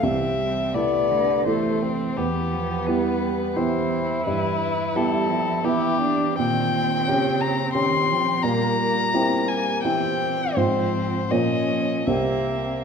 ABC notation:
X:1
M:3/4
L:1/8
Q:1/4=85
K:Ephr
V:1 name="Violin"
e2 d2 c2 | G2 B2 c2 | B2 A2 G2 | [K:Cphr] g3 b c'2 |
b3 a g2 | c2 e2 =e2 |]
V:2 name="Grand piano"
C,,2 [A,EA]2 [A,EA]2 | E,,2 [B,EG]2 [B,EG]2 | G,,2 [B,EG]2 [B,EG]2 | [K:Cphr] B,,2 [DG]2 [DG]2 |
B,,2 [C=EG]2 [CEG]2 | [A,,CFc]2 [B,,B,Fd]2 [C,,B,Cc]2 |]
V:3 name="Violin"
C2 B,2 A, C | B,4 E2- | E4 E D | [K:Cphr] C6 |
B, B, B,2 C2 | C2 D2 C2 |]
V:4 name="Cello" clef=bass
E, G, A, D, E,2 | E, F, G,2 E,2 | E,2 G, F, E,2 | [K:Cphr] E,2 D,2 E, F, |
G,2 G,2 =E,2 | F,2 F,2 B,2 |]